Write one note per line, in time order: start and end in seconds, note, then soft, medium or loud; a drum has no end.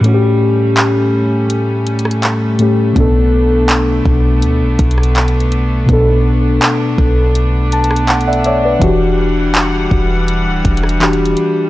0.00 2.54 A2 medium
0.00 2.92 G3 medium
0.00 2.55 A3 medium
0.00 8.77 A3 medium
0.00 2.93 C#4 medium
0.04 2.57 C#4 medium
0.04 0.12 F#4 medium
0.04 closed hi-hat medium
0.14 2.61 G4 medium
0.77 clap loud
0.77 closed hi-hat medium
1.50 closed hi-hat medium
1.87 closed hi-hat medium
1.99 closed hi-hat medium
2.05 cross-stick medium
2.11 closed hi-hat soft
2.23 clap loud
2.23 closed hi-hat medium
2.59 2.96 A2 medium
2.59 2.96 A3 medium
2.59 2.97 C#4 medium
2.59 2.98 G4 medium
2.59 closed hi-hat medium
2.93 4.02 B1 loud
2.93 5.83 B2 medium
2.93 5.85 B3 medium
2.93 8.78 B3 medium
2.93 11.70 D4 medium
2.93 kick loud
2.93 closed hi-hat medium
2.98 5.86 D4 medium
2.98 5.87 A4 medium
3.69 clap loud
3.69 closed hi-hat medium
4.05 4.44 B1 loud
4.05 kick loud
4.42 4.63 D2 medium
4.42 closed hi-hat medium
4.61 4.78 B1 loud
4.79 5.85 B1 loud
4.79 kick medium
4.79 closed hi-hat medium
4.91 closed hi-hat medium
4.98 cross-stick medium
5.03 closed hi-hat medium
5.16 clap loud
5.16 closed hi-hat soft
5.28 closed hi-hat soft
5.40 closed hi-hat soft
5.52 closed hi-hat medium
5.86 6.59 B1 loud
5.86 8.76 B2 medium
5.86 8.77 B3 medium
5.86 kick loud
5.86 closed hi-hat medium
5.91 8.79 D4 medium
5.91 8.80 A4 medium
6.62 clap loud
6.62 closed hi-hat medium
6.98 8.77 B1 loud
6.98 kick loud
7.35 closed hi-hat medium
7.72 8.06 A5 medium
7.72 closed hi-hat medium
7.84 closed hi-hat medium
7.91 cross-stick medium
7.96 closed hi-hat medium
8.08 8.27 F#5 medium
8.08 8.26 A5 medium
8.08 clap loud
8.08 closed hi-hat soft
8.21 closed hi-hat soft
8.28 8.45 D5 medium
8.28 8.44 E5 medium
8.28 8.45 F#5 medium
8.33 closed hi-hat soft
8.44 8.63 C#5 medium
8.44 8.63 D5 medium
8.44 8.63 E5 medium
8.44 closed hi-hat medium
8.64 8.99 B4 medium
8.64 8.99 D5 medium
8.79 9.87 E1 loud
8.79 10.96 E3 medium
8.79 11.70 E3 medium
8.79 11.70 G3 medium
8.79 10.97 D4 medium
8.79 11.70 F#5 medium
8.79 kick loud
8.79 closed hi-hat medium
8.84 10.98 F#4 medium
8.84 10.99 G4 medium
9.55 clap loud
9.55 closed hi-hat medium
9.91 10.48 E1 loud
9.91 kick loud
10.28 closed hi-hat medium
10.46 10.64 D1 loud
10.65 11.35 E1 loud
10.65 kick medium
10.65 closed hi-hat medium
10.77 closed hi-hat medium
10.83 cross-stick medium
10.89 closed hi-hat medium
11.00 11.70 E3 medium
11.00 11.70 D4 medium
11.00 11.70 F#4 medium
11.00 11.70 G4 medium
11.00 clap loud
11.00 closed hi-hat soft
11.13 closed hi-hat soft
11.25 closed hi-hat soft
11.37 closed hi-hat medium